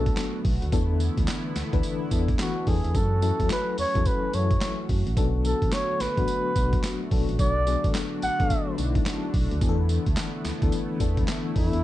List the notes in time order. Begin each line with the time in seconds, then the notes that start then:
Already playing: B1 D3 F#3 A3 B3 D4 F#4 A4
0.06 kick, closed hi-hat
0.17 snare, clap, closed hi-hat, tambourine
0.45 B1, kick, open hi-hat
0.62 D2, closed hi-hat
0.72 E2 D3 E3 B3 D4 E4 A4, kick, closed hi-hat, tambourine
1.00 closed hi-hat, tambourine
1.17 D2, kick, closed hi-hat
1.28 snare, clap, closed hi-hat, tambourine
1.56 D2, snare, closed hi-hat, tambourine
1.72 D2 E3 B3 D4 B4, kick, closed hi-hat
1.83 closed hi-hat, tambourine
2.11 E2 E3 B3 D4 A4, kick, closed hi-hat, tambourine
2.28 kick, closed hi-hat
2.39 F#4, snare, clap, closed hi-hat, tambourine
2.66 E2 E3 B3 D4 G#4 A4, kick, open hi-hat
2.84 E2, closed hi-hat
2.95 F#2 E3 A3 C#4 F#4 A4, kick, closed hi-hat, tambourine
3.22 F#3 C#4 E4 A4, closed hi-hat, tambourine
3.39 E2 F#3 C#4 E4 A4, kick, closed hi-hat
3.50 B4, snare, clap, closed hi-hat, tambourine
3.78 E2 C#5, open hi-hat, tambourine
3.95 E2 F#3 C#4 E4 A4, kick, closed hi-hat
4.05 B4, kick, closed hi-hat, tambourine
4.33 F#2 F#3 C#4 E4 A4 C#5, closed hi-hat, tambourine
4.51 kick, closed hi-hat
4.61 snare, clap, closed hi-hat, tambourine
4.89 F#2, kick, open hi-hat
5.07 A1, closed hi-hat
5.16 B1 D3 F#3 B3 D4 A4, kick, closed hi-hat, tambourine
5.45 A4, closed hi-hat, tambourine
5.62 A1, kick, closed hi-hat
5.72 C#5, snare, clap, closed hi-hat, tambourine
6.00 A1 B4, snare, closed hi-hat, tambourine
6.17 A1 F#3 B3 D4 F#4, kick, closed hi-hat
6.28 closed hi-hat, tambourine
6.55 B1 F#3 B3 D4 F#4, kick, closed hi-hat, tambourine
6.73 kick, closed hi-hat
6.84 snare, clap, closed hi-hat, tambourine
7.11 B1 F#3 B3 D4 A4, kick, open hi-hat
7.29 A1, closed hi-hat
7.39 B1 D4 D5, kick, closed hi-hat, tambourine
7.67 F#3 B3 D4 G#4, closed hi-hat, tambourine
7.84 A1 F#3 B3 D4 A4, kick, closed hi-hat
7.95 snare, clap, closed hi-hat, tambourine
8.22 A1 F#5, closed hi-hat, tambourine
8.39 A1 F#3 B3 D4 A4, kick, closed hi-hat
8.50 kick, closed hi-hat, tambourine
8.78 B1 F#3 B3 D4 D#4, closed hi-hat, tambourine
8.85 E4
8.95 kick, closed hi-hat
9.06 snare, clap, closed hi-hat, tambourine
9.34 B1, kick, open hi-hat
9.51 D2, closed hi-hat
9.61 E2 E3 A3 B3 D4 E4 G#4, kick, closed hi-hat, tambourine
9.69 A4
9.89 closed hi-hat, tambourine
10.06 D2, kick, closed hi-hat
10.17 snare, clap, closed hi-hat, tambourine
10.45 D2, snare, closed hi-hat, tambourine
10.62 D2 E3 B3 D4 A4, kick, closed hi-hat
10.72 closed hi-hat, tambourine
11.00 E2 E3 B3 D4 A4, kick, closed hi-hat, tambourine
11.17 kick, closed hi-hat
11.28 snare, clap, closed hi-hat, tambourine
11.55 E2 E3 B3 D4 E4 A4, kick, open hi-hat
11.73 E2, closed hi-hat